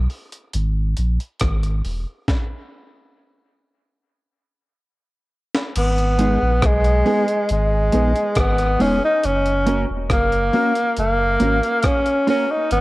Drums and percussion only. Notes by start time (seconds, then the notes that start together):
0.10 open hi-hat
0.32 closed hi-hat
0.53 closed hi-hat
0.97 closed hi-hat
1.20 closed hi-hat
1.40 kick, cross-stick, closed hi-hat
1.63 closed hi-hat
1.85 open hi-hat
2.28 kick, snare
5.55 snare
5.76 closed hi-hat, crash
5.98 closed hi-hat
6.19 closed hi-hat
6.62 kick, cross-stick, closed hi-hat
6.84 closed hi-hat
7.06 open hi-hat
7.28 closed hi-hat
7.49 closed hi-hat
7.92 closed hi-hat
8.16 closed hi-hat
8.35 kick, cross-stick, closed hi-hat
8.58 closed hi-hat
8.80 open hi-hat
9.23 closed hi-hat
9.46 closed hi-hat
9.66 closed hi-hat
10.10 kick, cross-stick, closed hi-hat
10.32 closed hi-hat
10.53 open hi-hat
10.75 closed hi-hat
10.97 closed hi-hat
11.40 closed hi-hat
11.63 closed hi-hat
11.83 kick, cross-stick, closed hi-hat
12.06 closed hi-hat
12.28 open hi-hat
12.71 closed hi-hat